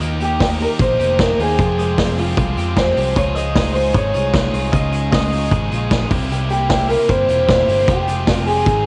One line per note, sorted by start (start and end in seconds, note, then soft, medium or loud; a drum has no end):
0.00 0.65 D#2 loud
0.00 0.20 D#3 medium
0.00 0.21 A#3 medium
0.00 0.20 D#4 loud
0.00 0.19 G4 medium
0.00 1.56 A#4 medium
0.00 1.56 D#5 medium
0.00 3.12 G5 medium
0.00 1.56 D#6 medium
0.00 hi-hat pedal medium
0.00 open hi-hat medium
0.20 0.39 A#3 soft
0.20 0.40 D#4 medium
0.20 0.40 G4 medium
0.20 0.41 G4 medium
0.20 hi-hat pedal medium
0.20 open hi-hat medium
0.39 0.60 D#3 medium
0.39 0.60 A#3 medium
0.39 0.60 D#4 medium
0.39 0.47 G4 medium
0.39 0.58 G4 medium
0.39 kick loud
0.39 snare loud
0.39 hi-hat pedal medium
0.39 open hi-hat medium
0.59 0.79 A#3 medium
0.59 0.80 D#4 medium
0.59 0.79 G4 medium
0.59 0.67 A#4 medium
0.59 hi-hat pedal medium
0.59 open hi-hat medium
0.79 0.96 A#1 medium
0.79 0.99 D#3 medium
0.79 1.00 A#3 medium
0.79 1.00 D#4 medium
0.79 0.98 G4 medium
0.79 1.21 C5 medium
0.79 kick loud
0.79 hi-hat pedal medium
0.79 open hi-hat medium
0.99 1.33 F1 medium
0.99 1.18 A#3 soft
0.99 1.19 D#4 soft
0.99 1.19 G4 medium
0.99 hi-hat pedal medium
0.99 open hi-hat medium
1.19 1.39 D#3 medium
1.19 1.39 A#3 medium
1.19 1.38 D#4 medium
1.19 1.36 G4 medium
1.19 1.41 A#4 loud
1.19 kick loud
1.19 snare loud
1.19 hi-hat pedal medium
1.19 open hi-hat medium
1.38 1.55 D#2 medium
1.38 1.59 A#3 soft
1.38 1.59 D#4 medium
1.38 1.49 F4 medium
1.38 1.58 G4 medium
1.38 2.21 G#4 medium
1.38 hi-hat pedal medium
1.38 open hi-hat medium
1.49 1.59 G4 medium
1.58 2.33 F1 loud
1.58 1.78 F2 medium
1.58 1.79 C3 medium
1.58 1.79 F3 medium
1.58 3.14 G#3 medium
1.58 1.79 G#3 medium
1.58 1.78 C4 medium
1.58 1.77 G4 loud
1.58 3.14 F5 medium
1.58 3.14 C6 medium
1.58 kick loud
1.58 hi-hat pedal medium
1.58 open hi-hat medium
1.78 1.96 F3 soft
1.78 1.97 G#3 medium
1.78 1.98 C4 medium
1.78 1.98 G4 medium
1.78 hi-hat pedal medium
1.78 open hi-hat medium
1.97 2.17 F3 medium
1.97 2.18 G#3 medium
1.97 2.17 C4 medium
1.97 2.16 G4 medium
1.97 kick loud
1.97 snare loud
1.97 hi-hat pedal medium
1.97 open hi-hat medium
2.17 2.38 F3 soft
2.17 2.38 G#3 medium
2.17 2.37 C4 medium
2.17 2.28 F4 medium
2.17 2.79 F4 loud
2.17 2.37 G4 medium
2.17 hi-hat pedal medium
2.17 open hi-hat medium
2.28 2.56 G4 medium
2.37 2.54 C2 medium
2.37 2.57 F2 medium
2.37 2.57 C3 medium
2.37 2.58 F3 medium
2.37 2.58 G#3 medium
2.37 2.57 C4 medium
2.37 2.56 G4 medium
2.37 kick loud
2.37 hi-hat pedal medium
2.37 open hi-hat medium
2.57 2.91 F2 loud
2.57 2.75 F3 soft
2.57 2.76 G#3 medium
2.57 2.77 C4 medium
2.57 2.77 G4 medium
2.57 hi-hat pedal medium
2.57 open hi-hat medium
2.76 2.96 F3 medium
2.76 2.97 G#3 medium
2.76 2.96 C4 medium
2.76 2.95 G4 medium
2.76 3.14 C5 loud
2.76 kick loud
2.76 snare loud
2.76 hi-hat pedal medium
2.76 open hi-hat loud
2.96 3.13 C2 medium
2.96 3.15 F3 soft
2.96 3.16 G#3 medium
2.96 3.16 C4 medium
2.96 3.16 G4 medium
2.96 hi-hat pedal medium
2.96 open hi-hat medium
3.16 3.91 C#2 loud
3.16 3.36 C#3 medium
3.16 3.36 F3 medium
3.16 3.36 G#3 medium
3.16 3.36 D#4 medium
3.16 3.74 F4 medium
3.16 6.08 G#4 medium
3.16 3.35 G#4 medium
3.16 3.22 C#5 loud
3.16 6.08 D#5 medium
3.16 6.08 F5 medium
3.16 6.08 C#6 medium
3.16 kick loud
3.16 hi-hat pedal medium
3.16 open hi-hat medium
3.35 3.55 G#3 soft
3.35 3.56 D#4 medium
3.35 3.55 G#4 medium
3.35 3.74 D#5 loud
3.35 hi-hat pedal medium
3.35 open hi-hat medium
3.55 3.75 F3 medium
3.55 3.75 G#3 medium
3.55 3.74 D#4 medium
3.55 3.72 G#4 medium
3.55 kick loud
3.55 snare loud
3.55 hi-hat pedal medium
3.55 open hi-hat medium
3.74 3.94 G#3 medium
3.74 3.94 D#4 medium
3.74 4.14 F4 medium
3.74 3.94 G#4 medium
3.74 3.94 C5 medium
3.74 hi-hat pedal medium
3.74 open hi-hat medium
3.93 4.11 G#1 medium
3.93 4.13 C#3 medium
3.93 4.14 F3 medium
3.93 4.14 G#3 medium
3.93 4.14 D#4 medium
3.93 4.12 G#4 medium
3.93 4.72 C#5 loud
3.93 kick loud
3.93 hi-hat pedal medium
3.93 open hi-hat medium
4.14 4.48 C2 medium
4.14 4.33 G#3 soft
4.14 4.35 D#4 medium
4.14 4.52 F4 medium
4.14 4.34 G#4 medium
4.14 hi-hat pedal medium
4.14 open hi-hat medium
4.33 4.53 F3 medium
4.33 4.54 G#3 medium
4.33 4.53 D#4 medium
4.33 4.51 G#4 medium
4.33 kick loud
4.33 snare loud
4.33 hi-hat pedal medium
4.33 open hi-hat loud
4.52 4.70 C2 loud
4.52 4.72 G#3 medium
4.52 4.73 D#4 medium
4.52 4.72 F4 medium
4.52 4.72 G#4 medium
4.52 hi-hat pedal medium
4.52 open hi-hat medium
4.72 5.48 C#2 loud
4.72 4.92 C#3 medium
4.72 4.92 F3 medium
4.72 4.93 G#3 medium
4.72 4.92 D#4 medium
4.72 5.31 F4 medium
4.72 4.90 G#4 medium
4.72 5.09 D#5 loud
4.72 kick loud
4.72 hi-hat pedal medium
4.72 open hi-hat medium
4.91 5.11 G#3 medium
4.91 5.12 D#4 medium
4.91 5.12 G#4 medium
4.91 hi-hat pedal medium
4.91 open hi-hat medium
5.11 5.31 F3 medium
5.11 5.32 G#3 medium
5.11 5.22 C#4 medium
5.11 5.32 D#4 medium
5.11 5.30 G#4 medium
5.11 6.07 D#5 loud
5.11 kick loud
5.11 snare loud
5.11 hi-hat pedal medium
5.11 open hi-hat medium
5.22 5.90 D#4 medium
5.31 5.51 G#3 soft
5.31 5.52 D#4 medium
5.31 5.71 F4 medium
5.31 5.51 G#4 medium
5.31 hi-hat pedal medium
5.31 open hi-hat medium
5.51 5.68 G#1 loud
5.51 5.71 C#3 medium
5.51 5.71 F3 medium
5.51 5.72 G#3 medium
5.51 5.71 D#4 medium
5.51 5.70 G#4 medium
5.51 kick loud
5.51 hi-hat pedal medium
5.51 open hi-hat medium
5.71 6.05 A#1 medium
5.71 5.90 G#3 soft
5.71 5.91 D#4 medium
5.71 6.15 F4 medium
5.71 5.91 G#4 medium
5.71 hi-hat pedal medium
5.71 open hi-hat medium
5.90 6.10 F3 medium
5.90 6.11 G#3 medium
5.90 6.11 D#4 medium
5.90 6.09 G#4 medium
5.90 kick loud
5.90 snare loud
5.90 hi-hat pedal medium
5.90 open hi-hat loud
6.09 6.94 C2 loud
6.09 6.30 C3 medium
6.09 6.29 A#3 medium
6.09 6.29 E4 medium
6.09 6.30 G4 medium
6.09 7.86 A#4 medium
6.09 7.86 E5 medium
6.09 8.64 G5 medium
6.09 8.86 C6 medium
6.09 kick loud
6.09 hi-hat pedal medium
6.09 open hi-hat medium
6.29 6.50 C3 medium
6.29 6.50 G3 medium
6.29 6.50 A#3 loud
6.29 6.49 E4 loud
6.29 6.48 G4 loud
6.29 hi-hat pedal medium
6.29 open hi-hat medium
6.49 6.69 A#3 medium
6.49 6.70 E4 medium
6.49 6.69 G4 medium
6.49 6.69 G4 loud
6.49 hi-hat pedal medium
6.49 open hi-hat medium
6.69 6.89 G3 medium
6.69 6.90 A#3 medium
6.69 6.89 E4 medium
6.69 6.89 G4 medium
6.69 6.87 G4 medium
6.69 kick loud
6.69 snare loud
6.69 hi-hat pedal medium
6.69 open hi-hat medium
6.89 7.08 A#3 soft
6.89 7.09 E4 medium
6.89 7.00 F4 medium
6.89 7.09 G4 medium
6.89 7.09 A#4 medium
6.89 hi-hat pedal medium
6.89 open hi-hat medium
7.00 7.29 G4 medium
7.08 7.26 G1 loud
7.08 7.28 C3 medium
7.08 7.29 G3 medium
7.08 7.29 A#3 medium
7.08 7.29 E4 medium
7.08 7.27 G4 medium
7.08 7.46 C5 loud
7.08 kick loud
7.08 hi-hat pedal medium
7.08 open hi-hat medium
7.28 7.62 E1 loud
7.28 7.48 A#3 soft
7.28 7.49 E4 soft
7.28 7.40 F4 medium
7.28 7.48 G4 medium
7.28 hi-hat pedal medium
7.28 open hi-hat medium
7.40 7.67 G4 medium
7.47 7.68 G3 medium
7.47 7.69 A#3 medium
7.47 7.68 E4 medium
7.47 7.88 C5 loud
7.47 kick loud
7.47 snare loud
7.47 hi-hat pedal medium
7.47 open hi-hat medium
7.51 7.66 G4 medium
7.67 7.85 G1 medium
7.67 7.89 A#3 medium
7.67 7.88 E4 medium
7.67 7.87 G4 medium
7.67 hi-hat pedal medium
7.67 open hi-hat medium
7.87 8.63 F1 loud
7.87 8.07 F2 medium
7.87 8.08 C3 medium
7.87 8.08 F3 medium
7.87 8.86 G#3 medium
7.87 8.08 G#3 medium
7.87 8.07 F4 medium
7.87 8.34 G4 medium
7.87 8.06 G4 medium
7.87 8.66 F5 medium
7.87 kick loud
7.87 hi-hat pedal medium
7.87 open hi-hat medium
8.07 8.26 F3 soft
8.07 8.28 G#3 medium
8.07 8.28 F4 medium
8.07 8.27 G4 medium
8.07 hi-hat pedal medium
8.07 open hi-hat medium
8.27 8.47 F3 medium
8.27 8.48 G#3 medium
8.27 8.70 C4 medium
8.27 8.47 F4 medium
8.27 8.45 G4 medium
8.27 kick loud
8.27 snare loud
8.27 hi-hat pedal medium
8.27 open hi-hat medium
8.34 8.46 F4 medium
8.46 8.67 F3 soft
8.46 8.66 G#3 medium
8.46 8.67 F4 medium
8.46 8.66 G4 medium
8.46 8.86 G#4 medium
8.46 hi-hat pedal medium
8.46 open hi-hat medium
8.65 8.86 G#1 loud
8.65 8.86 G#2 medium
8.65 8.86 D#3 medium
8.65 8.86 G#3 medium
8.65 8.86 C4 medium
8.65 8.86 D#4 medium
8.65 8.84 G#4 medium
8.65 8.86 C5 medium
8.65 8.86 D#5 medium
8.65 kick loud
8.65 hi-hat pedal medium
8.65 open hi-hat medium